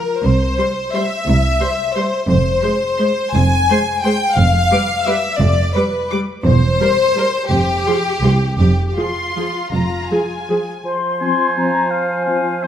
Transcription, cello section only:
0, 0, Header, 1, 2, 480
1, 0, Start_track
1, 0, Key_signature, -4, "minor"
1, 0, Tempo, 340522
1, 335, Time_signature, 3, 2, 24, 8
1, 3697, Tempo, 348837
1, 10897, Tempo, 375469
1, 14257, Tempo, 357995
1, 17190, End_track
2, 0, Start_track
2, 0, Title_t, "Cello section"
2, 0, Program_c, 0, 48
2, 332, Note_on_c, 0, 36, 50
2, 712, Note_off_c, 0, 36, 0
2, 1789, Note_on_c, 0, 36, 54
2, 2158, Note_off_c, 0, 36, 0
2, 3219, Note_on_c, 0, 41, 58
2, 3592, Note_off_c, 0, 41, 0
2, 4689, Note_on_c, 0, 41, 65
2, 5060, Note_off_c, 0, 41, 0
2, 6094, Note_on_c, 0, 41, 59
2, 6463, Note_off_c, 0, 41, 0
2, 7513, Note_on_c, 0, 41, 67
2, 7891, Note_off_c, 0, 41, 0
2, 8972, Note_on_c, 0, 40, 61
2, 9345, Note_off_c, 0, 40, 0
2, 10413, Note_on_c, 0, 41, 52
2, 10790, Note_off_c, 0, 41, 0
2, 11379, Note_on_c, 0, 36, 53
2, 11742, Note_off_c, 0, 36, 0
2, 11835, Note_on_c, 0, 41, 51
2, 12212, Note_off_c, 0, 41, 0
2, 13292, Note_on_c, 0, 41, 47
2, 13661, Note_off_c, 0, 41, 0
2, 17190, End_track
0, 0, End_of_file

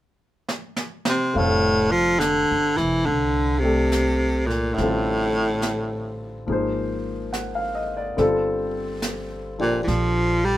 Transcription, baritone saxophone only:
0, 0, Header, 1, 2, 480
1, 0, Start_track
1, 0, Key_signature, -1, "major"
1, 0, Tempo, 858369
1, 755, Time_signature, 4, 2, 24, 8
1, 2198, Tempo, 848656
1, 5956, End_track
2, 0, Start_track
2, 0, Title_t, "Baritone saxophone"
2, 0, Program_c, 0, 67
2, 607, Note_on_c, 0, 48, 68
2, 769, Note_on_c, 0, 45, 68
2, 777, Note_off_c, 0, 48, 0
2, 1070, Note_on_c, 0, 53, 75
2, 1079, Note_off_c, 0, 45, 0
2, 1228, Note_on_c, 0, 50, 69
2, 1237, Note_off_c, 0, 53, 0
2, 1551, Note_on_c, 0, 52, 76
2, 1559, Note_off_c, 0, 50, 0
2, 1711, Note_on_c, 0, 50, 74
2, 1719, Note_off_c, 0, 52, 0
2, 2007, Note_on_c, 0, 48, 75
2, 2016, Note_off_c, 0, 50, 0
2, 2499, Note_on_c, 0, 46, 61
2, 2508, Note_off_c, 0, 48, 0
2, 2657, Note_on_c, 0, 45, 66
2, 2665, Note_off_c, 0, 46, 0
2, 3627, Note_off_c, 0, 45, 0
2, 5411, Note_on_c, 0, 46, 66
2, 5530, Note_off_c, 0, 46, 0
2, 5538, Note_on_c, 0, 52, 56
2, 5564, Note_on_c, 0, 53, 79
2, 5573, Note_off_c, 0, 52, 0
2, 5886, Note_on_c, 0, 55, 75
2, 5894, Note_off_c, 0, 53, 0
2, 5956, Note_off_c, 0, 55, 0
2, 5956, End_track
0, 0, End_of_file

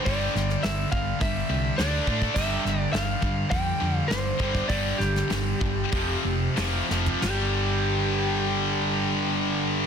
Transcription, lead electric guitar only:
0, 0, Header, 1, 2, 480
1, 0, Start_track
1, 0, Tempo, 575264
1, 48, Time_signature, 4, 2, 24, 8
1, 2928, Tempo, 597610
1, 4368, Tempo, 632911
1, 5328, Tempo, 670391
1, 7690, End_track
2, 0, Start_track
2, 0, Title_t, "Lead electric guitar"
2, 0, Program_c, 0, 29
2, 44, Note_on_c, 0, 74, 92
2, 526, Note_on_c, 0, 76, 92
2, 540, Note_off_c, 0, 74, 0
2, 750, Note_off_c, 0, 76, 0
2, 765, Note_on_c, 0, 77, 93
2, 1011, Note_off_c, 0, 77, 0
2, 1014, Note_on_c, 0, 76, 98
2, 1456, Note_off_c, 0, 76, 0
2, 1485, Note_on_c, 0, 74, 92
2, 1956, Note_on_c, 0, 76, 99
2, 1978, Note_off_c, 0, 74, 0
2, 2348, Note_off_c, 0, 76, 0
2, 2348, Note_on_c, 0, 74, 99
2, 2440, Note_off_c, 0, 74, 0
2, 2443, Note_on_c, 0, 77, 98
2, 2921, Note_off_c, 0, 77, 0
2, 2924, Note_on_c, 0, 79, 101
2, 3302, Note_off_c, 0, 79, 0
2, 3302, Note_on_c, 0, 77, 101
2, 3386, Note_on_c, 0, 72, 89
2, 3412, Note_off_c, 0, 77, 0
2, 3870, Note_off_c, 0, 72, 0
2, 3874, Note_on_c, 0, 74, 92
2, 4113, Note_on_c, 0, 67, 79
2, 4127, Note_off_c, 0, 74, 0
2, 5530, Note_off_c, 0, 67, 0
2, 5804, Note_on_c, 0, 67, 79
2, 7690, Note_off_c, 0, 67, 0
2, 7690, End_track
0, 0, End_of_file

